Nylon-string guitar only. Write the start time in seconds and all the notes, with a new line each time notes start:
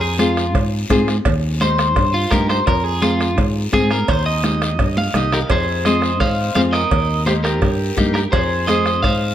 0.19 C4 F4 G#4
0.90 C4 F4 G#4
1.61 A#3 D#4 G4
2.32 A#3 D#4 G4
3.01 C4 F4 G#4
3.72 C4 F4 G#4
4.43 A#3 D#4 G4
5.15 A#3 D#4 G4
5.85 C4 F4 G#4
6.55 C4 F4 G#4
7.26 A#3 D#4 G4
7.97 A#3 D#4 G4
8.68 C4 F4 G#4